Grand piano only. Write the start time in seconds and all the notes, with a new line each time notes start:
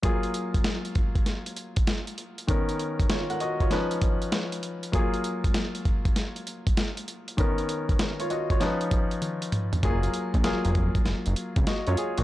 0.02 F#3 A#3 F4 G#4
2.47 D#3 B3 C#4 A#4
3.10 F4 C#5
3.30 A#4 F#5
3.41 F#4 D#5
3.61 F4 C#5
3.70 F3 C#4 D#4 B4
4.92 F#3 A#3 F4 G#4
7.37 D#3 B3 C#4 A#4
8.20 F4 C#5
8.30 F#4 D#5
8.51 F4 C#5
8.60 F3 C#4 D#4 B4
9.83 F#3 A#3 F4 G#4
10.44 F#3 A#3 F4 G#4
11.67 F#4 D#5
11.87 F4 C#5
11.98 G#4
12.18 A#3 F#4